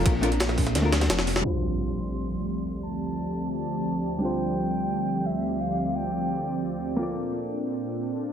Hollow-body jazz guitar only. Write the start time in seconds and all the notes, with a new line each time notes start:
0.04 A3 D4 F4 A#4
0.21 A3 D4 F4 A#4
0.82 A3 D4 F4 A#4
1.41 G3 D4 E4
1.46 F4 C5
4.19 G3 D4 G4
4.23 F4 C5
6.96 A#3 F4
7.01 A4 D5